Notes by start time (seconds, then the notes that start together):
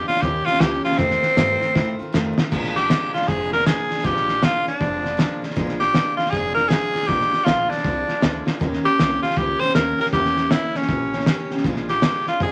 0.07 G#3 D4 F4, muted upright bass stroke, snare
0.15 snare
0.21 D#2 D#3 A#3 C#4 G4, kick, snare
0.45 A#3 C#4 F4 G4, muted upright bass stroke, snare
0.54 snare
0.59 C#2 D#3 A#3 C#4 G4, snare, hi-hat pedal
0.83 A#3 C#4 F4 G4, muted upright bass stroke, snare
0.91 snare
0.97 F2 C3 D#3 A3 C4 F4, kick, snare
1.10 snare
1.22 D#3 A3 C4 F4, muted upright bass stroke, snare
1.37 F2 G2 C3 D#3 A3 C4 F4, snare, hi-hat pedal
1.60 D#3 A3 C4 F4, muted upright bass stroke, snare
1.74 A2 D#3 A3 C4 F4, kick, snare
1.99 D#3 A3 C4 F4, muted upright bass stroke
2.12 F2 C3 D#3 A3 C4 F4, snare, hi-hat pedal
2.37 D#3 A3 C4 F4, muted upright bass stroke, snare
2.51 A#1 A#2 F3 G#3 D4 F4, kick, snare, crash
2.64 snare
2.76 G#3 D4 F4 G4, snare
2.90 A#2 F3 G#3 D4 F4, snare, hi-hat pedal
3.13 G#3 D4 F4, muted upright bass stroke, snare
3.22 snare
3.27 F1 F3 G#3 D4 F4 G#4, kick, snare
3.51 G#3 D4 F4 A#4, snare
3.59 snare
3.65 A#2 F3 G#3 D4 F4 G#4, snare, hi-hat pedal
3.89 G#3 D4 F4, muted upright bass stroke, snare
3.98 snare
4.02 A#1 A#2 F3 G#3 D4 F4 G4, kick, snare
4.16 snare
4.26 G#3 D4 F4, snare
4.42 A#2 F3 G#3 D4 F4, snare, hi-hat pedal
4.65 G#3 D4 F4, muted upright bass stroke, snare
4.79 F1 F3 G#3 D4 F4, kick, snare
5.03 G#3 D4 F4, snare
5.17 A#2 F3 G#3 D4 F4, snare, hi-hat pedal
5.42 G#3 D4 F4, muted upright bass stroke, snare
5.50 snare
5.56 A#1 A#2 F3 G#3 D4 F4, kick, snare
5.69 snare
5.79 G#3 D4 F4 G4, snare
5.93 A#2 F3 G#3 D4 F4, snare, hi-hat pedal
6.17 G#3 D4 F4, muted upright bass stroke, snare
6.26 snare
6.30 F1 F3 G#3 D4 F4 G#4, kick, snare
6.54 D4 F4 A#4, snare
6.58 G#3
6.68 A#2 F3 G#3 D4 F4 G#4, snare, hi-hat pedal
6.92 G#3 D4 F4, muted upright bass stroke, snare
7.02 snare
7.06 A#1 A#2 F3 G#3 D4 F4 G4, kick, snare
7.21 snare
7.31 G#3 D4 F4, muted upright bass stroke, snare
7.45 A#1 A#2 F3 G#3 D4 F4, snare, hi-hat pedal
7.69 G#3 D4 F4, muted upright bass stroke, snare
7.77 snare
7.84 C2 F3 G#3 D4 F4, kick, snare
8.07 G#3 D4 F4, muted upright bass stroke, snare
8.21 D2 A#2 F3 G#3 D4 F4, snare, hi-hat pedal
8.46 G#3 D4 F4, muted upright bass stroke, snare
8.60 D#2 D#3 A#3 C#4 G4, kick, snare
8.73 snare
8.83 A#3 C#4 G4, muted upright bass stroke, snare
8.97 C2 D#3 A#3 C#4 G4, snare, hi-hat pedal
9.22 A#3 C#4 F4 G4, muted upright bass stroke, snare
9.30 snare
9.36 C#2 D#3 A#3 C#4 G4, kick, snare
9.60 A#3 C#4 G4 C5, muted upright bass stroke, snare
9.68 snare
9.74 D#2 D#3 A#3 C#4 G4 A#4, snare, hi-hat pedal
9.98 A#3 C#4 G4 A#4, muted upright bass stroke, snare
10.06 snare
10.13 E2 E3 A#3 C#4 G4, kick, snare
10.25 snare
10.36 A#3 C#4 G4, snare
10.50 E3 A#3 C#4 E4 G4, snare, hi-hat pedal
10.74 A#3 C#4 G4, muted upright bass stroke, snare
10.82 snare
10.88 A#1 E3 A#3 C#4 G4, kick, snare
11.12 A#3 C#4 G4, snare
11.20 snare
11.26 E3 A#3 C#4 G4, snare, hi-hat pedal
11.51 A#3 C#4 G4, muted upright bass stroke, snare
11.57 snare
11.64 A#1 A#2 F3 G#3 D4 F4, kick, snare
11.76 snare
11.88 D4 F4 G4, snare
11.92 G#3
12.02 A#2 F3 G#3 D4 F4, snare, hi-hat pedal
12.26 G#3 D4 F4, muted upright bass stroke, snare
12.40 F2 F3 G#3 D4 G#4, kick, snare
12.44 F4